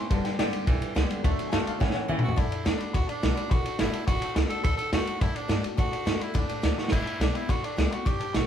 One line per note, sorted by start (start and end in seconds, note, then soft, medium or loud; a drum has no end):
0.00 0.10 C#4 soft
0.00 0.10 C6 loud
0.10 0.23 G1 medium
0.10 0.64 G2 loud
0.10 0.36 D3 medium
0.10 1.20 G3 medium
0.10 1.20 B3 medium
0.10 1.20 D4 medium
0.10 0.25 A5 loud
0.10 kick loud
0.10 ride medium
0.24 0.38 G5 medium
0.24 muted upright bass stroke medium
0.24 snare soft
0.24 ride medium
0.39 0.52 A1 loud
0.39 0.64 G2 medium
0.39 0.52 D3 medium
0.39 0.53 G3 medium
0.39 0.53 B3 medium
0.39 0.52 G4 medium
0.39 1.20 D5 medium
0.39 1.22 G5 loud
0.39 snare loud
0.39 ride medium
0.53 0.67 B3 soft
0.53 0.66 G4 medium
0.53 muted upright bass stroke soft
0.53 ride medium
0.67 0.81 B1 medium
0.67 0.92 G2 medium
0.67 0.94 D3 medium
0.67 0.93 E3 loud
0.67 kick loud
0.67 ride medium
0.82 muted upright bass stroke medium
0.82 ride medium
0.95 1.09 C#2 medium
0.95 1.21 G2 medium
0.95 1.09 D3 medium
0.95 1.09 G3 medium
0.95 1.09 B3 medium
0.95 1.08 G4 loud
0.95 snare loud
0.95 ride medium
1.09 1.24 B3 medium
1.09 1.23 G4 medium
1.09 ride medium
1.22 1.38 D2 medium
1.22 1.50 D3 loud
1.22 1.77 F#3 medium
1.22 1.77 A3 medium
1.22 1.50 A3 medium
1.22 1.78 D4 medium
1.22 kick loud
1.22 ride medium
1.39 ride medium
1.49 1.65 D3 medium
1.49 1.66 A3 medium
1.49 1.65 F5 medium
1.49 1.51 G#5 medium
1.53 1.66 F#2 medium
1.53 1.66 D4 medium
1.53 1.64 F#4 loud
1.53 1.66 A5 loud
1.53 snare loud
1.53 ride medium
1.65 1.80 D4 medium
1.65 1.79 F#4 medium
1.65 1.80 F5 medium
1.65 1.81 A5 medium
1.65 muted upright bass stroke medium
1.65 ride medium
1.79 2.34 A2 medium
1.79 1.94 A2 medium
1.79 2.20 E3 medium
1.79 2.06 E3 medium
1.79 2.20 A3 medium
1.79 2.21 C#4 medium
1.79 1.93 C#5 medium
1.79 1.93 F#5 loud
1.79 kick loud
1.79 snare medium
1.90 2.08 C#5 medium
1.90 snare medium
1.95 2.08 F#5 medium
1.95 muted upright bass stroke medium
2.08 2.34 A2 medium
2.08 2.23 C#3 loud
2.08 2.22 E3 medium
2.08 2.22 A3 medium
2.08 2.22 C#4 loud
2.08 2.21 E4 medium
2.08 2.36 E5 loud
2.08 mid tom medium
2.19 2.36 E4 medium
2.19 mid tom loud
2.23 2.37 C#4 soft
2.23 2.40 F#4 loud
2.23 muted upright bass stroke medium
2.29 floor tom medium
2.36 2.51 F#2 medium
2.36 2.64 D3 medium
2.36 2.68 E4 medium
2.36 2.45 D5 loud
2.36 2.45 F#5 medium
2.36 2.46 A5 loud
2.36 kick loud
2.36 ride medium
2.50 2.59 D5 medium
2.50 2.59 F#5 medium
2.50 2.59 A5 medium
2.50 muted upright bass stroke medium
2.50 ride medium
2.64 2.79 E2 loud
2.64 2.79 D3 medium
2.64 2.79 A3 medium
2.64 2.79 D4 medium
2.64 2.94 D4 medium
2.64 2.78 F#4 medium
2.64 2.73 D5 medium
2.64 2.73 F#5 medium
2.64 2.73 A5 medium
2.64 snare loud
2.64 ride medium
2.78 2.94 D4 soft
2.78 2.93 F#4 medium
2.78 2.87 D5 medium
2.78 2.88 F#5 medium
2.78 2.88 B5 medium
2.78 muted upright bass stroke medium
2.78 ride medium
2.93 3.08 D2 medium
2.93 3.48 A2 medium
2.93 3.11 F#4 loud
2.93 3.02 D5 medium
2.93 3.02 F#5 medium
2.93 3.02 B5 loud
2.93 kick loud
2.93 ride medium
3.07 3.53 D4 medium
3.07 3.16 D5 medium
3.07 3.16 F#5 medium
3.07 3.16 A5 medium
3.07 muted upright bass stroke medium
3.07 ride medium
3.22 3.36 B1 loud
3.22 3.36 D3 medium
3.22 3.36 A3 medium
3.22 3.37 D4 medium
3.22 3.35 F#4 medium
3.22 3.31 D5 medium
3.22 3.31 F#5 medium
3.22 3.31 A5 medium
3.22 snare loud
3.22 ride medium
3.35 3.51 D4 soft
3.35 3.50 F#4 medium
3.35 3.44 D5 medium
3.35 3.44 F#5 medium
3.35 3.45 B5 medium
3.35 ride medium
3.49 3.65 A1 medium
3.49 3.78 D3 medium
3.49 3.80 F#4 loud
3.49 3.59 D5 medium
3.49 3.59 F#5 medium
3.49 3.59 B5 loud
3.49 kick loud
3.49 ride medium
3.65 3.73 D5 medium
3.65 3.73 F#5 medium
3.65 3.74 A5 medium
3.65 muted upright bass stroke medium
3.65 ride medium
3.78 3.93 G1 medium
3.78 3.93 D3 medium
3.78 3.93 A3 medium
3.78 3.93 D4 medium
3.78 4.06 E4 loud
3.78 3.93 F#4 medium
3.78 3.87 D5 medium
3.78 3.87 F#5 medium
3.78 3.87 A5 medium
3.78 snare loud
3.78 ride medium
3.93 4.08 D4 soft
3.93 4.07 F#4 medium
3.93 4.02 D5 medium
3.93 4.01 F#5 medium
3.93 4.02 A5 medium
3.93 muted upright bass stroke medium
3.93 ride medium
4.06 4.21 F#1 medium
4.06 4.62 A2 medium
4.06 4.34 F#4 loud
4.06 4.15 D5 loud
4.06 4.16 F#5 medium
4.06 4.16 B5 loud
4.06 kick loud
4.06 ride loud
4.20 4.30 D5 medium
4.20 4.30 F#5 medium
4.20 4.30 A5 medium
4.20 muted upright bass stroke medium
4.20 ride medium
4.35 4.49 C#2 loud
4.35 4.63 D3 medium
4.35 4.63 A3 medium
4.35 4.63 D4 medium
4.35 4.64 F#4 medium
4.35 4.44 D5 medium
4.35 4.44 F#5 medium
4.35 4.44 B5 medium
4.35 snare loud
4.35 ride medium
4.49 4.63 A4 loud
4.49 4.58 D5 medium
4.49 4.58 F#5 medium
4.49 4.58 A5 medium
4.49 muted upright bass stroke medium
4.49 ride medium
4.63 4.78 D2 medium
4.63 4.91 D3 medium
4.63 4.77 A4 loud
4.63 4.72 D5 medium
4.63 4.72 F#5 medium
4.63 4.72 B5 loud
4.63 kick loud
4.63 ride medium
4.77 4.91 A4 loud
4.77 4.86 D5 medium
4.77 4.87 F#5 medium
4.77 4.87 A5 medium
4.77 muted upright bass stroke medium
4.77 ride medium
4.92 5.06 E2 loud
4.92 5.06 D3 medium
4.92 5.06 A3 medium
4.92 5.07 D4 loud
4.92 5.23 F#4 loud
4.92 5.05 F#4 medium
4.92 5.01 D5 medium
4.92 5.01 F#5 medium
4.92 5.01 A5 medium
4.92 snare loud
4.92 ride medium
5.06 5.21 D4 medium
5.06 5.20 F#4 medium
5.06 5.15 D5 medium
5.06 5.15 F#5 medium
5.06 5.16 A5 medium
5.06 muted upright bass stroke medium
5.06 ride medium
5.21 5.35 F#2 medium
5.21 5.75 A2 medium
5.21 5.37 E4 loud
5.21 5.30 D5 loud
5.21 5.30 F#5 medium
5.21 5.30 A5 loud
5.21 kick loud
5.21 ride medium
5.35 5.64 D4 loud
5.35 5.44 D5 medium
5.35 5.44 F#5 medium
5.35 5.44 A5 medium
5.35 ride medium
5.48 5.63 G2 loud
5.48 5.63 D3 medium
5.48 5.63 A3 medium
5.48 5.63 D4 medium
5.48 5.61 F#4 medium
5.48 5.57 D5 medium
5.48 5.58 F#5 medium
5.48 5.58 A5 medium
5.48 snare loud
5.48 ride medium
5.63 5.78 D4 medium
5.63 5.77 F#4 medium
5.63 5.72 D5 medium
5.63 5.72 F#5 medium
5.63 5.72 A5 medium
5.63 muted upright bass stroke medium
5.63 ride medium
5.77 5.92 A2 medium
5.77 6.04 D3 loud
5.77 6.24 F#4 loud
5.77 5.86 D5 medium
5.77 5.86 F#5 medium
5.77 5.86 A5 loud
5.77 kick loud
5.77 ride medium
5.91 6.00 D5 medium
5.91 6.00 F#5 medium
5.91 6.01 A5 medium
5.91 muted upright bass stroke medium
5.91 ride medium
6.05 6.19 F#2 loud
6.05 6.20 D3 medium
6.05 6.20 A3 medium
6.05 6.20 D4 medium
6.05 6.19 F#4 medium
6.05 6.14 D5 medium
6.05 6.14 F#5 medium
6.05 6.15 A5 medium
6.05 snare loud
6.05 ride medium
6.19 6.35 D4 soft
6.19 6.37 E4 medium
6.19 6.34 F#4 medium
6.19 6.29 D5 medium
6.19 6.29 F#5 medium
6.19 6.29 B5 medium
6.19 muted upright bass stroke medium
6.19 ride medium
6.34 6.48 E2 medium
6.34 6.88 A2 loud
6.34 6.80 D4 medium
6.34 6.43 D5 medium
6.34 6.43 F#5 medium
6.34 6.43 B5 loud
6.34 kick loud
6.34 ride medium
6.48 6.57 D5 medium
6.48 6.57 F#5 medium
6.48 6.58 A5 medium
6.48 muted upright bass stroke medium
6.48 ride medium
6.62 6.76 D2 loud
6.62 6.76 D3 medium
6.62 6.77 A3 medium
6.62 6.77 D4 medium
6.62 6.76 F#4 medium
6.62 6.72 D5 medium
6.62 6.72 F#5 medium
6.62 6.72 A5 medium
6.62 snare loud
6.62 ride medium
6.77 6.92 D4 soft
6.77 6.91 F#4 medium
6.77 6.86 D5 medium
6.77 6.86 F#5 medium
6.77 6.86 A5 medium
6.77 snare medium
6.88 7.05 G1 medium
6.88 7.46 G2 medium
6.88 7.18 E4 loud
6.88 7.00 D5 loud
6.88 7.00 G5 medium
6.88 7.01 B5 medium
6.88 snare loud
6.92 kick loud
6.92 ride medium
6.92 crash medium
7.06 7.14 D5 medium
7.06 7.15 G5 medium
7.06 7.15 B5 medium
7.06 muted upright bass stroke medium
7.06 ride medium
7.20 7.34 B1 medium
7.20 7.34 D3 medium
7.20 7.34 G3 medium
7.20 7.34 B3 medium
7.20 7.37 D4 medium
7.20 7.32 G4 medium
7.20 7.29 D5 medium
7.20 7.29 G5 medium
7.20 7.29 A5 medium
7.20 snare loud
7.20 ride loud
7.33 7.48 B3 soft
7.33 7.51 E4 medium
7.33 7.48 G4 medium
7.33 7.43 D5 medium
7.33 7.43 G5 medium
7.33 7.43 B5 medium
7.33 ride medium
7.49 7.76 D3 loud
7.49 7.66 F#4 medium
7.49 7.57 D5 medium
7.49 7.57 G5 medium
7.49 7.58 B5 loud
7.49 kick loud
7.49 ride medium
7.63 7.95 D4 loud
7.63 7.72 D5 medium
7.63 7.72 G5 medium
7.63 7.72 C#6 medium
7.63 muted upright bass stroke soft
7.63 ride medium
7.76 7.91 C#2 loud
7.76 7.91 D3 medium
7.76 7.91 G3 medium
7.76 7.91 B3 loud
7.76 7.90 G4 medium
7.76 7.85 D5 medium
7.76 7.86 G5 medium
7.76 7.86 D6 medium
7.76 snare loud
7.76 ride medium
7.90 8.06 B3 soft
7.90 8.08 F#4 medium
7.90 8.05 G4 medium
7.90 8.00 D5 medium
7.90 8.00 G5 medium
7.90 8.00 B5 medium
7.90 muted upright bass stroke medium
7.90 ride medium
8.05 8.19 B1 medium
8.05 8.47 G2 loud
8.05 8.37 G4 loud
8.05 8.14 D5 medium
8.05 8.14 G5 medium
8.05 8.14 C#6 loud
8.05 kick loud
8.05 ride medium
8.19 8.28 D5 medium
8.19 8.28 G5 medium
8.19 8.28 A5 medium
8.19 muted upright bass stroke soft
8.19 ride medium
8.33 8.47 A1 medium
8.33 8.47 D3 medium
8.33 8.47 G3 medium
8.33 8.47 B3 loud
8.33 8.47 F#4 loud
8.33 8.46 G4 medium
8.33 8.42 D5 medium
8.33 8.42 G5 medium
8.33 8.42 B5 medium
8.33 snare loud
8.33 ride medium